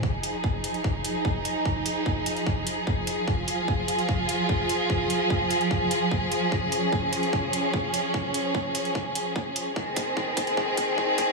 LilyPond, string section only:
\new Staff \with { instrumentName = "String section" } { \time 4/4 \key f \minor \tempo 4 = 148 << { <f aes'>1~ | <f aes'>1~ | <f aes'>1~ | <f aes'>1~ |
<f aes'>1~ | <f aes'>1 | <ees aes'>1 | } \\ { ees'1~ | ees'1 | f'1~ | f'1 |
des'1~ | des'1 | c'1 | } >> }